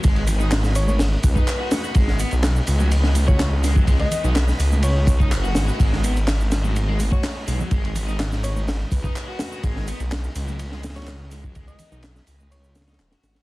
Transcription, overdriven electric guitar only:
\new Staff \with { instrumentName = "Overdriven electric guitar" } { \clef bass \time 4/4 \key gis \minor \tempo 4 = 125 gis16 gis16 r16 dis'16 r4. r16 dis'16 r16 fis'8 fis'16 | gis8 b16 r4 fis16 r16 gis16 r16 fis'16 r8 gis16 fis16 | gis16 gis16 r16 dis'16 r4. r16 dis'16 r16 fis'8 fis'16 | gis8 b16 r4 fis16 r16 gis16 r16 fis'16 r8 gis16 fis16 |
gis16 gis16 r16 dis'16 r4. r16 dis'16 r16 fis'8 fis'16 | gis8 b16 r4 fis16 r16 gis16 r16 fis'16 r8 gis16 fis16 | gis16 gis16 r16 dis'16 r4. r16 dis'16 r16 fis'8 fis'16 | }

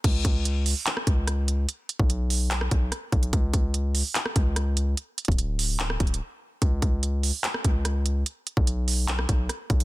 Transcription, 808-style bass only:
\new Staff \with { instrumentName = "808-style bass" } { \clef bass \time 4/4 \key b \dorian \tempo 4 = 146 cis,8 cis,4~ cis,16 r8. cis,4. | r8. b,,4.~ b,,16 b,,8 r8 b,,8 | cis,8 cis,4~ cis,16 r8. cis,4. | r8. d,,4.~ d,,16 d,,8 r4 |
cis,8 cis,4~ cis,16 r8. cis,4. | r8. b,,4.~ b,,16 b,,8 r8 b,,8 | }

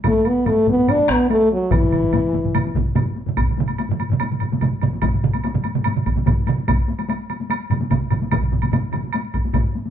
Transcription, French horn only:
\new Staff \with { instrumentName = "French horn" } { \time 4/4 \tempo 4 = 145 a8 b8 a8 b8 d'8 b8 a8 fis8 | e2. r4 | r1 | r1 |
r1 | r1 | }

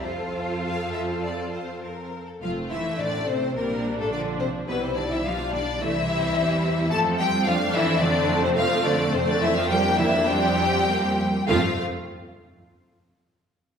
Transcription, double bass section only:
\new Staff \with { instrumentName = "Double bass section" } { \clef bass \time 4/4 \key f \major \tempo 4 = 105 f,2.~ f,8 r8 | f,,4 a,,4 bes,,2 | b,,2 c,4 e,4 | f,1 |
f,2.~ f,8 r8 | f,8 r2. r8 | }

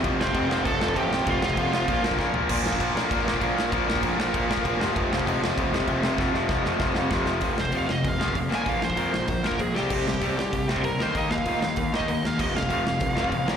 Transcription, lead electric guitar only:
\new Staff \with { instrumentName = "Lead electric guitar" } { \time 4/4 \key bes \lydian \tempo 4 = 194 r8 <c' c''>4. <a' a''>4 <g' g''>4 | <f' f''>8 <f' f''>2 r4. | r1 | r1 |
r1 | r1 | r8 c''8 f''8 ees''8 f''4 r8 aes''8 | f''8 c''2 bes'8 aes'8 g'8~ |
g'2~ g'8 r8 bes'8 c''8 | ees''8 f''2 ees''8 ees''8 f''8 | ees''8 f''2. r8 | }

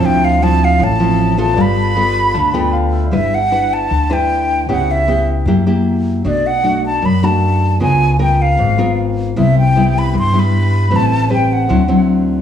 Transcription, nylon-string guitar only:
\new Staff \with { instrumentName = "Nylon-string guitar" } { \time 4/4 \key g \mixolydian \tempo 4 = 154 << { <eis bis e'>4 <f c' e'>4 r8 <f c' e'>4 <b f' a'>8~ | <b f' a'>4 <b f' a'>4 r8 <b f' a'>4. | \key g \major <d' e' b'>8 r8 <d' e' b'>4 r8 <d' e' b'>4. | <b e' g'>4 <b e' g'>4 <ais e' g'>8 <ais e' g'>4. |
<a d' fis'>8 r8 <a d' fis'>4 r8 <a d' fis'>4. | <b eis' ais'>4 <b eis' ais'>4. <b eis' ais'>4. | <g b e'>8 r8 <g b e'>4. <g b e'>4. | <c' g' b'>4 <c' g' b'>4 <fis c' e'>8 <fis c' e'>4. | } \\ { d2 a,2 | g2 d2 | g2 d2 | cis2 fis2 |
b,2 fis,2 | cis2 gis,2 | c2 g,2 | a2 d2 | } >> }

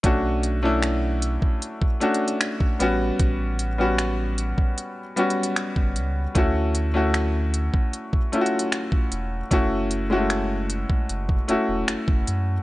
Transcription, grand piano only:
\new Staff \with { instrumentName = "Grand piano" } { \time 4/4 \key b \minor \tempo 4 = 76 <a cis' d' fis'>8. <a cis' d' e'>4. r16 <a cis' d' fis'>4 <g b cis' fis'>8~ | <g b cis' fis'>8 r16 <g b cis' fis'>4. r16 <g b cis' fis'>4~ <g b cis' fis'>16 r16 | <a cis' e' fis'>8. <a cis' e' fis'>4. r16 <a cis' e' eis' fis'>4~ <a cis' e' eis' fis'>16 r16 | <a cis' e' fis'>8. <gis a cis' e' fis'>4. r16 <a cis' e' fis'>4~ <a cis' e' fis'>16 r16 | }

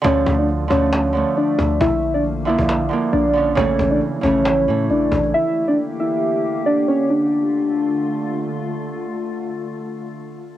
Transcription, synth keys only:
\new Staff \with { instrumentName = "Synth keys" } { \time 4/4 \key d \minor \tempo 4 = 136 <cis' cis''>8. <d' d''>16 r8 <cis' cis''>4. <d' d''>4 | <e' e''>8. <d' d''>16 r8 <e' e''>4. <d' d''>4 | <cis' cis''>8. <d' d''>16 r8 <cis' cis''>4. <d' d''>4 | <e' e''>8. <d' d''>16 r8 <e' e''>4. <d' d''>8 <cis' cis''>8 |
d'2. r4 | r1 | }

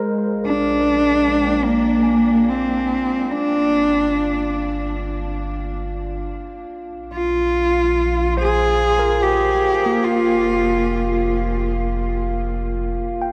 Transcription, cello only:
\new Staff \with { instrumentName = "Cello" } { \time 4/4 \key bes \mixolydian \tempo 4 = 72 r8 d'4. bes4 c'4 | d'4. r2 r8 | r8 f'4. aes'4 g'4 | f'4. r2 r8 | }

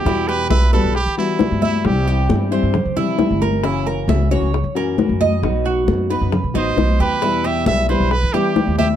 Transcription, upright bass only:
\new Staff \with { instrumentName = "Upright bass" } { \clef bass \time 4/4 \key e \minor \tempo 4 = 134 e,4 b,,8. b,,8 e4 g,8. | c,4 g,8. g,8 c4 g,,8. | fis,,4 cis,8. cis,8 fis,4 fis,8. | b,,4 fis,8. fis,8 b,16 a,,8 b,,8 dis,8 |
e,4 b,,8. b,,8 e4 dis,8. | }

